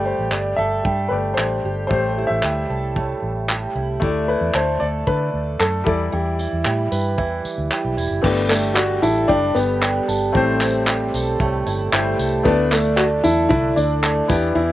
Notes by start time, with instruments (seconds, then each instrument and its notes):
Already playing: fingered electric bass G1, twelve-string acoustic guitar G3, grand piano A3 G4 D5
0.05 twelve-string acoustic guitar G4, upright piano C5
0.19 fingered electric bass A1
0.32 fingered electric bass G1, twelve-string acoustic guitar D4, upright piano D5, clap
0.56 fingered electric bass G1, twelve-string acoustic guitar A4, upright piano E5
0.85 fingered electric bass G2, twelve-string acoustic guitar G3, kick
1.08 fingered electric bass G1, grand piano A3 G4 D5, upright piano B4
1.34 fingered electric bass A1, twelve-string acoustic guitar D4, upright piano C5
1.38 clap
1.64 fingered electric bass G1, twelve-string acoustic guitar G4
1.87 fingered electric bass A1, twelve-string acoustic guitar A2, grand piano A3 G4, upright piano C5, kick
1.93 grand piano C5
2.18 twelve-string acoustic guitar E4
2.27 fingered electric bass A1, upright piano E5
2.43 fingered electric bass D2, twelve-string acoustic guitar G3, clap
2.70 fingered electric bass C2, twelve-string acoustic guitar A4
2.96 twelve-string acoustic guitar A2, kick
3.22 fingered electric bass A1
3.49 twelve-string acoustic guitar G3, clap
3.75 fingered electric bass C2, twelve-string acoustic guitar E4
4.00 fingered electric bass D2, twelve-string acoustic guitar D3, grand piano A3 E4 D5, kick
4.28 twelve-string acoustic guitar E4, upright piano B4
4.41 fingered electric bass E2
4.54 fingered electric bass D2, twelve-string acoustic guitar A3, upright piano C5, clap
4.80 fingered electric bass D2, twelve-string acoustic guitar A4, upright piano D5
5.07 twelve-string acoustic guitar D3, fingered electric bass D3, upright piano B4, kick
5.34 fingered electric bass D2
5.59 fingered electric bass F#2, twelve-string acoustic guitar A3, upright piano A4, clap
5.84 fingered electric bass E2, twelve-string acoustic guitar E3, grand piano G3 E4 D5, upright piano A4, kick
6.12 fingered electric bass E2, twelve-string acoustic guitar E3, upright piano G4
6.39 twelve-string acoustic guitar E4, tambourine
6.53 fingered electric bass E2
6.65 fingered electric bass A2, twelve-string acoustic guitar G3, clap
6.92 fingered electric bass G2, twelve-string acoustic guitar B4, tambourine
7.18 fingered electric bass E2, twelve-string acoustic guitar E3, kick
7.45 muted fingered electric bass stroke, tambourine
7.58 fingered electric bass D2
7.71 twelve-string acoustic guitar G3, clap
7.85 fingered electric bass B1
7.97 fingered electric bass E1, twelve-string acoustic guitar E4, tambourine
8.11 fingered electric bass F#1
8.22 fingered electric bass G1, twelve-string acoustic guitar G3, grand piano A3 D4 G4 D5, upright piano B3, kick, crash
8.49 upright piano A3, twelve-string acoustic guitar D4, clap, tambourine
8.74 twelve-string acoustic guitar D4, upright piano F#4, clap
9.02 fingered electric bass A1, upright piano E4, twelve-string acoustic guitar A4, tambourine
9.28 fingered electric bass F#1, twelve-string acoustic guitar G3, upright piano D4, kick
9.55 fingered electric bass G1, upright piano B3, twelve-string acoustic guitar G4, tambourine
9.81 twelve-string acoustic guitar D4, clap
10.08 fingered electric bass G1, twelve-string acoustic guitar A4, tambourine
10.33 fingered electric bass A1, twelve-string acoustic guitar A2, grand piano A3 E4 G4, upright piano C4, kick
10.37 grand piano C5
10.61 twelve-string acoustic guitar C4, clap, tambourine
10.87 twelve-string acoustic guitar G3, clap
11.14 fingered electric bass B1, twelve-string acoustic guitar A4, tambourine
11.40 fingered electric bass C2, twelve-string acoustic guitar A2, kick
11.66 fingered electric bass G1, twelve-string acoustic guitar E4, tambourine
11.92 fingered electric bass G1, twelve-string acoustic guitar G3, grand piano A3 E4 G4 C5, clap
12.19 fingered electric bass C2, twelve-string acoustic guitar A4, tambourine
12.43 fingered electric bass D2, twelve-string acoustic guitar D3, grand piano A3 D4 E4, upright piano B3, kick
12.48 grand piano D5
12.71 upright piano A3, twelve-string acoustic guitar D4, clap, tambourine
12.96 twelve-string acoustic guitar A3, upright piano F#4, clap
13.24 fingered electric bass E2, upright piano E4, twelve-string acoustic guitar A4, tambourine
13.49 fingered electric bass C2, twelve-string acoustic guitar D3, upright piano E4, kick
13.76 fingered electric bass D2, upright piano D4, twelve-string acoustic guitar E4, tambourine
14.03 twelve-string acoustic guitar A3, clap
14.28 fingered electric bass E2, twelve-string acoustic guitar E3, grand piano B3 E4 G4, kick, tambourine
14.32 grand piano D5
14.55 fingered electric bass E2, twelve-string acoustic guitar E3, upright piano E4